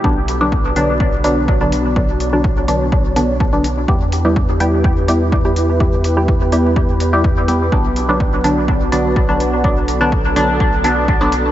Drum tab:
HH |-x-x-x-x|-x-x-x-x|-x-x-x-x|-x-x-x-x|
BD |o-o-o-o-|o-o-o-o-|o-o-o-o-|o-o-o-o-|

HH |-x-x-x-x|-x-x-x-x|
BD |o-o-o-o-|o-o-o-o-|